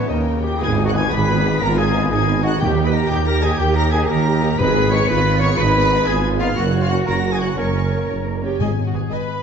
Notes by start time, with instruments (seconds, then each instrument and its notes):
Already playing: violin section A5
0.08 double bass section D#2, cello section D#2, viola section C#3, french horn section A#3, flute A#4, violin section C#5 D#5 G5, clarinet D#5
0.43 clarinet G4, trumpet section G4, flute G5, violin section G5 G6
0.58 tuba G#1, double bass section G#1, viola section B3 B4, clarinet G#4, violin section G#5, flute G#5, tam-tam
0.63 trumpet section G#4, violin section G#6
0.78 viola section D#4 G#4
0.85 clarinet F#4, trumpet section F#4, flute F#5, violin section F#5 F#6
0.93 viola section B3 B4, french horn section B3 D#4, clarinet G#4, trumpet section G#4, violin section G#5 G#6, flute G#5
1.09 double bass section G#1, tuba G#1, viola section D#4 G#4, cello section G#4, clarinet B4, trumpet section B4, violin section B5 B6, flute B5
1.29 viola section B3 B4
1.45 french horn section B3 D#4, viola section D#4 G#4
1.60 double bass section G#1, tuba G#1, viola section B3 B4, cello section F4, clarinet A#4, trumpet section A#4, violin section A#5 A#6, flute A#5
1.77 viola section D#4 G#4, clarinet G#4, trumpet section G#4, flute G#5, violin section G#5 G#6
1.93 french horn section B3 D#4, viola section B3 B4
2.09 double bass section G#1, tuba G#1, viola section D#4 G#4, cello section D#4, clarinet G#4, trumpet section G#4, violin section G#5 G#6, flute G#5
2.27 viola section B3 B4
2.43 french horn section B3 D#4, viola section D#4 G#4, clarinet F#4, trumpet section F#4, violin section F#5 F#6, flute F#5
2.58 tuba D#2, double bass section D#2, timpani D#3, viola section G4 A#4, clarinet G4, cello section G4, trumpet section G4, violin section G5 G6, flute G5
2.76 viola section D#4 G4
2.84 clarinet B4, trumpet section B4, flute B5, violin section B5 B6
2.91 french horn section A#3 D#4, viola section G4 A#4, clarinet A#4, flute A#5, violin section A#5 A#6
2.95 trumpet section A#4
3.07 tuba D#2, double bass section D#2, viola section D#4 G4, clarinet G4, flute G5, violin section G5 G6
3.12 trumpet section G4
3.25 viola section G4 A#4, clarinet A#4, trumpet section A#4, flute A#5, violin section A#5 A#6
3.42 french horn section A#3 D#4, viola section D#4 G4, clarinet G#4, trumpet section G#4, flute G#5, violin section G#5 G#6
3.58 double bass section D#2, tuba D#2, clarinet G4, viola section G4 A#4, trumpet section G4, flute G5, violin section G5 G6
3.74 viola section D#4 G4, clarinet A#4, trumpet section A#4, flute A#5, violin section A#5 A#6
3.91 french horn section A#3 D#4, viola section G4 A#4, clarinet G#4, trumpet section G#4, flute G#5, violin section G#5 G#6
4.08 tuba D#2, double bass section D#2, viola section D#4 G4, clarinet A#4, trumpet section A#4, violin section A#5 A#6, flute A#5
4.27 viola section G4 A#4
4.42 french horn section A#3 D#4, viola section D#4 G4
4.58 double bass section G#1, tuba G#1, timpani G#2, viola section G#3 B4, cello section G#4, clarinet B4, trumpet section B4, violin section B5 B6, flute B5
4.76 viola section B3 G#4
4.91 viola section G#3 B4, french horn section B3 D#4, clarinet C#5, trumpet section C#5, flute C#6, violin section C#6 C#7
5.07 tuba G#1, double bass section G#1, viola section B3 G#4, cello section F4, clarinet B4, trumpet section B4, flute B5, violin section B5 B6
5.27 viola section G#3 B4
5.39 viola section B3 G#4, french horn section D#4, clarinet C#5, trumpet section C#5, violin section C#6 C#7, flute C#6
5.43 french horn section B3
5.57 double bass section G#1, tuba G#1, viola section G#3 B4, cello section D#4, clarinet B4, trumpet section B4, flute B5, violin section B5 B6
5.75 viola section B3 G#4
5.92 viola section G#3 B4, french horn section B3 D#4
6.06 double bass section G#1, tuba G#1, viola section B3 G#4, cello section F4, clarinet G#4, trumpet section G#4, flute G#5, violin section G#5 G#6
6.23 viola section G#3 B4
6.38 viola section B3 G#4, french horn section B3, clarinet F4, trumpet section F4, flute F5, violin section F5 F6
6.43 french horn section D#4
6.55 tuba F#1, double bass section F#1, viola section A#3 A#4, clarinet F#4, trumpet section F#4, cello section F#4, flute F#5, violin section F#5 F#6
6.74 viola section C#4 C#5
6.81 clarinet F4, trumpet section F4, flute F5, violin section F5 F6
6.89 viola section A#3 A#4, french horn section A#3 C#4, clarinet F#4, trumpet section F#4, flute F#5, violin section F#5 F#6
7.06 tuba F#1, double bass section F#1, viola section C#4 C#5, clarinet A#4, trumpet section A#4, flute A#5, violin section A#5 A#6
7.26 viola section A#3 A#4
7.32 trumpet section G#4, clarinet G#4, flute G#5, violin section G#5 G#6
7.39 french horn section A#3 C#4, viola section C#4 C#5, trumpet section F#4, clarinet F#4, flute F#5, violin section F#5 F#6
7.57 tuba F#1, double bass section F#1, viola section A#3 A#4, clarinet C#4, trumpet section C#4, cello section A#4, flute C#5, violin section C#5 C#6
7.75 viola section C#4 C#5
7.91 french horn section A#3 C#4, viola section A#3 A#4
8.08 tuba F#1, double bass section F#1, viola section C#4 C#5
8.25 viola section A#3 A#4
8.42 french horn section A#3 C#4, viola section C#4 G4 C#5, violin section G5
8.59 double bass section G#1, cello section G#2, timpani G#2, viola section G#4, violin section D#5 G#5
8.84 viola section F#4, violin section F#5
8.93 double bass section G#1, cello section G#2, violin section G#4 B4 G#5, viola section G#4
9.10 double bass section G#1, cello section G#2, viola section B4, violin section D#5 G#5 B5